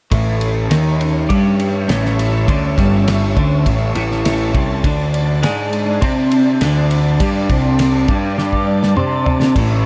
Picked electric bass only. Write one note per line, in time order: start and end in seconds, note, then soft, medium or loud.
0.12 0.67 A1 medium
0.71 1.26 D#2 medium
1.30 1.85 G2 medium
1.89 2.44 A1 medium
2.48 2.76 D2 loud
2.78 3.33 G1 loud
3.37 3.64 D2 medium
3.66 3.94 A1 medium
3.96 4.51 A1 medium
4.55 4.82 C2 loud
4.84 5.39 D2 loud
5.43 5.98 G#2 medium
6.02 6.57 C3 loud
6.61 7.16 D2 medium
7.20 7.48 G2 medium
7.50 8.05 C2 medium
8.09 8.36 G2 medium
8.38 8.93 G2 medium
8.97 9.52 C3 medium
9.56 9.86 A1 loud